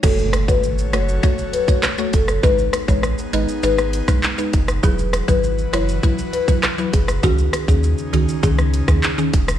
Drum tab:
CC |x---------------|----------------|----------------|----------------|
HH |--x---x---x---x-|--x---x---x---x-|--x---x---x---x-|--x---x---x---x-|
SH |xxxxxxxxxxxxxxxx|xxxxxxxxxxxxxxxx|xxxxxxxxxxxxxxxx|xxxxxxxxxxxxxxxx|
CP |------------x---|------------x---|------------x---|------------x---|
SD |--r---r-----r--r|--r-r----r-r---r|--r---r-----r--r|--r------r-r---r|
BD |o--o----o--o--o-|o--o-------o--o-|o--o----o--o--o-|o--o----o--o--o-|